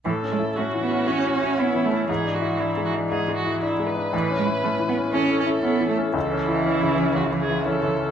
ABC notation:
X:1
M:4/4
L:1/8
Q:1/4=118
K:A
V:1 name="Viola"
A2 F4 E2 | G F E F G F E B- | B4 A4 | A2 E2 F G A2 |]
V:2 name="Grand piano"
(3A,, C E (3C E, C (3E, C E (3C E, C | (3G,, D E (3D G, D (3G,, G, E (3D G, D | (3A,, C E (3C E, C (3E, C E (3C E, C | (3C,, C E (3C C, C (3C,, C, E (3C C, C |]
V:3 name="Cello"
E, G, A, B, C C B, A, | E,6- E, z | E, G, A, B, C C B, A, | E,6- E, z |]